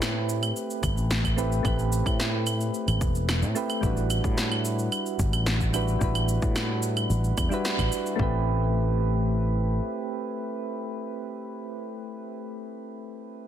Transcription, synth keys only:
Already playing: A3 C4 E4 G4 B4
1.36 A3 C4 E4 G4 B4
1.63 A3 C4 E4 G4
1.68 B4
3.55 A3 C4 E4 G4 B4
3.81 G3 D4 E4 F#4
3.86 B4
5.73 G3 D4 E4 F#4 B4
5.99 G3 D4 E4 F#4
6.04 B4
7.49 G3 D4 E4 F#4
7.54 B4
8.16 A3 C4 E4
8.21 G4 B4

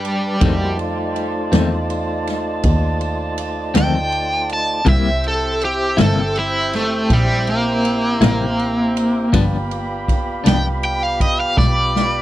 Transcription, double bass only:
Already playing: G2
0.42 F2
1.52 E2
2.64 D#2
3.75 D2
4.87 C2
5.98 G1
7.10 A#1
8.21 A1
9.33 G1
10.46 C2
11.58 B1

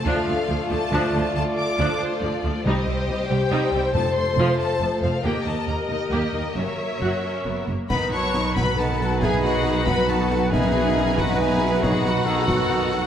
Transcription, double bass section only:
0.06 D2
0.27 D2
0.49 D2
0.71 D2
0.93 D2
1.13 D2
1.35 D2
1.79 D2
2.22 D2
2.44 D2
2.66 C2
2.87 C2
3.08 C2
3.29 C2
3.51 C2
3.73 C2
3.94 F1
4.37 F1
4.80 F1
5.02 F1
5.24 D#2
5.46 D#2
5.68 D#2
5.89 D#2
6.11 D#2
6.33 D#2
6.56 F#1
7.01 F#1
7.46 F#1
7.69 F#1
7.91 B1

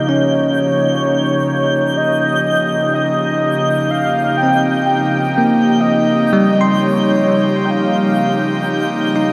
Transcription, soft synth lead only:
0.07 C#5
1.97 D#5
2.94 D#5
3.91 F5
4.37 G5
4.86 G5
5.80 D#5
6.75 C#5
7.65 G5
7.70 F5

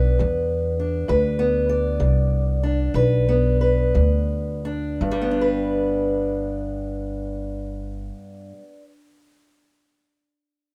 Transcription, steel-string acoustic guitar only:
Already playing: B3 D4 B4
0.19 G3
0.80 D4
1.08 G2 B4
1.39 B3
1.69 D5
2.00 G3
2.63 D4
2.94 G2 B4
3.29 B3
3.61 B4
3.95 G3
4.65 D4
5.02 G2
5.11 G3
5.22 B3
5.31 D4
5.41 B4

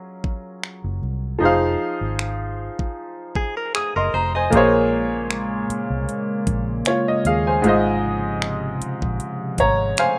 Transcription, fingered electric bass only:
0.84 F#1
1.02 C2
1.41 F1
2.01 G#1
3.96 F#1
4.14 F1
4.53 A#1
5.70 muted fingered electric bass stroke
5.90 C2
6.47 A#1
7.25 D#2
7.64 G#1
8.81 muted fingered electric bass stroke
9.02 A#1
9.59 G#1

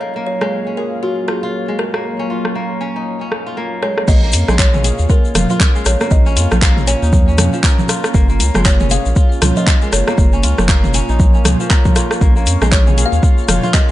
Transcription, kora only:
Already playing: C#4 D#4 F4 A#4
0.01 A#3
0.16 A#3
0.41 G#3
0.67 C#4
0.77 G#4
1.03 F4
1.28 F4
1.43 F4
1.68 G#3
1.94 A#3
2.19 C#4
2.30 F4
2.55 A#3
2.81 C#4
2.96 D#4
3.21 C#4
3.46 F4
3.57 A#3
3.83 G#3
4.08 A#3
4.23 A#3
4.48 G#3
4.74 C#4
4.84 G#4
5.10 F4
5.35 F4
5.50 F4
5.75 G#3
6.01 A#3
6.26 C#4
6.37 F4
6.62 A#3
6.87 C#4
7.02 D#4
7.28 C#4
7.53 F3
7.64 A#4
7.89 F4
8.14 A#3
8.29 A#3
8.55 G#3
8.80 C#4
8.91 G#4
9.16 F4
9.42 F4
9.57 F4
9.82 G#3
10.08 A#3
10.33 C#4
10.44 F4
10.69 A#3
10.95 C#4
11.09 D#4
11.35 C#4
11.60 F3
11.71 A#4
11.96 F4
12.22 A#3
12.36 A#3
12.62 G#3
12.87 C#4
12.97 G#4
13.23 F4
13.48 F4
13.63 F4

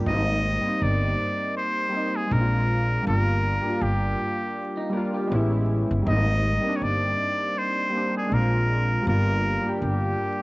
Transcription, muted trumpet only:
0.08 D#5
0.83 D5
1.57 C5
2.16 G#4
2.33 A#4
3.07 A#4
3.82 G4
6.08 D#5
6.76 C#5
6.83 D5
7.58 C5
8.17 G#4
8.33 A#4
9.08 A#4
9.83 G4

